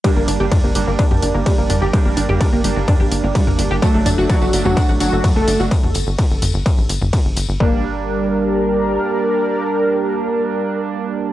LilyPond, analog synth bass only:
\new Staff \with { instrumentName = "Analog synth bass" } { \clef bass \time 4/4 \key g \minor \tempo 4 = 127 r16 g,,16 g,,16 g,,16 r16 g,,16 g,,16 g,,16 r16 a,,16 g,,16 g,,16 r16 g,,16 g,,16 g,,16 | r16 g,,16 g,,16 g,,16 r16 g,,16 g,,16 g,,16 r16 a,,16 g,,16 g,,16 r16 g,,16 g,,16 g,,16 | r16 g,,16 g,,16 g,,16 r16 g,,16 g,,16 g,,16 r16 a,,16 g,,16 g,,16 r16 g,,16 g,,16 g,,16 | r16 g,,16 g,,16 g,,16 r16 g,,16 g,,16 g,,16 r16 a,,16 g,,16 g,,16 r16 g,,16 g,,16 g,,16 |
g,,2. r4 | r1 | }